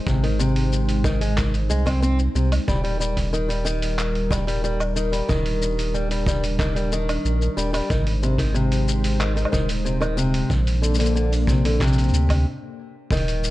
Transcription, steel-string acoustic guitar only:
0.06 C3
0.23 D#3
0.39 C3
1.04 D#3
1.21 G#3
1.37 D#3
1.70 G#3
1.86 C4
2.02 C4
2.35 C3
2.68 G3
2.84 G3
3.00 G3
3.33 D#3
3.49 G3
3.65 D#3
4.30 G3
4.47 G3
4.64 G3
4.96 D#3
5.12 G3
5.29 D#3
5.94 G3
6.11 G3
6.28 G3
6.59 D#3
6.76 G3
6.93 D#3
7.57 G3
7.73 G3
7.90 D#3
8.23 C3
8.38 D#3
8.54 C3
9.20 D#3
9.36 D#3
9.52 D#3
9.85 C3
10.01 D#3
10.17 C3
10.82 D3
10.99 D3
11.15 D3
11.48 C3
11.65 D3
11.81 C3
13.12 D#3

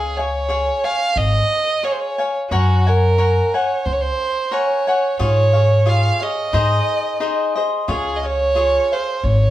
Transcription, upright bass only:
Already playing: C#2
1.16 G#1
2.51 F#2
3.86 C#2
5.20 G#2
6.53 G#2
7.88 C#2
9.23 G#1

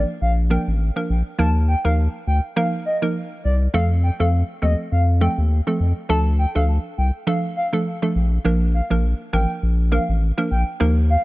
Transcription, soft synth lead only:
0.22 F5
0.51 G5
1.39 A5
1.68 G5
1.85 F5
2.27 G5
2.56 F5
2.86 D#5
3.44 D5
3.74 F5
4.03 G5
4.20 F5
4.62 D#5
4.92 F5
5.21 G5
6.09 A5
6.39 G5
6.55 F5
6.98 G5
7.27 F5
7.56 F5
8.74 F5
9.33 G5
9.92 F5
10.51 G5
11.10 F5

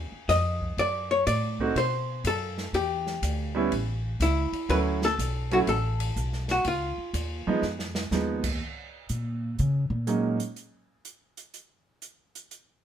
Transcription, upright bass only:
Already playing: D#2
0.12 muted upright bass stroke
0.28 F2
0.77 F#2
1.27 A2
1.75 B2
2.24 F#2
2.73 E2
3.22 D2
3.71 A1
4.20 C#2
4.52 muted upright bass stroke
4.69 D2
5.19 B1
5.67 A1
6.16 B1
6.65 C#2
6.98 muted upright bass stroke
7.14 D#2
7.47 muted upright bass stroke
7.62 F2
8.11 D#2
9.10 A#2
9.59 C#3
9.90 A#2

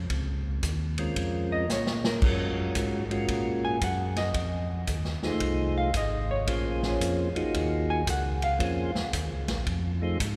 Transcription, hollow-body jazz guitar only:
Already playing: C4
1.52 D#5
1.72 C#5
2.06 A#4
3.65 G#5
3.84 F#5
4.17 D#5
5.78 F5
5.97 D#5
6.31 C#5
7.90 G#5
8.10 F#5
8.44 F5

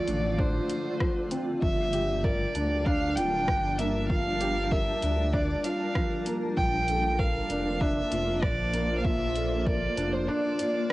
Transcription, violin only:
Already playing: D5
0.39 C5
1.62 E5
2.24 D5
2.85 F5
3.16 G5
3.78 E5
4.09 F5
4.71 E5
5.33 D5
5.64 F5
6.57 G5
7.19 F5
7.80 E5
8.42 D5
8.98 F5
9.04 E5
9.59 E5
9.66 D5
10.13 C5
10.28 D5

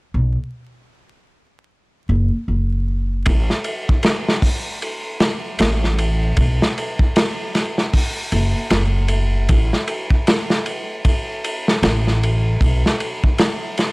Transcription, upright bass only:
0.14 B1
2.09 F#1
2.48 F#1
3.26 A1
5.60 A1
6.37 B1
8.32 F#1
8.71 F#1
9.50 A1
11.82 A1
12.61 B1

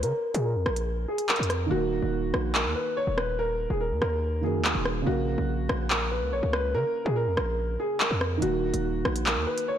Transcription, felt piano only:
1.66 D#3 A#3
1.72 F#4 A#4
4.41 D#3 A#3 F#4
4.46 A#4
5.02 C#3 A#3
5.08 A#4 F5
8.38 D#3 A#3
8.44 F#4 A#4

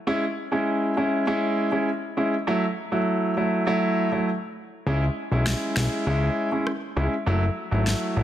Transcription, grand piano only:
0.07 G#3 C#4 E4
0.52 G#3 C#4 E4
0.97 G#3 C#4 E4
1.27 G#3 C#4 E4
1.72 G#3 C#4 E4
2.17 G#3 C#4 E4
2.47 F#3 A3 E4
2.92 F#3 A3 E4
3.37 F#3 A3 E4
3.67 F#3 A3 E4
4.12 F#3 A3 E4
4.87 G#3 C#4 E4
5.32 G#3 C#4 E4
5.77 G#3 C#4 E4
6.07 G#3 C#4 E4
6.52 G#3 C#4 E4
6.96 G#3 C#4 E4
7.26 F#3 A3 E4
7.71 F#3 A3 E4
8.16 F#3 A3 E4

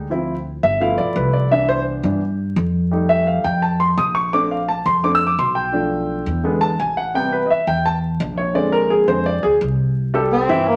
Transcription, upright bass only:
Already playing: D2
0.63 G1
0.99 B1
1.16 C2
2.03 G2
2.56 F2
3.44 F2
3.97 A#1
4.86 F2
5.38 B1
6.26 E2
6.79 A1
7.67 E2
8.20 A#1
9.08 F2
9.44 D2
9.61 C2
10.49 G2

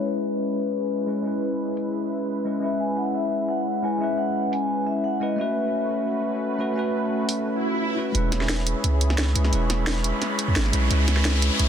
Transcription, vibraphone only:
0.05 B4
2.63 E5
2.80 G#5
2.97 F#5
3.15 E5
3.49 F#5
3.83 G#5
4.01 E5
4.18 F#5
4.52 G#5
4.87 E5
5.04 F#5
5.21 D#5
5.39 E5

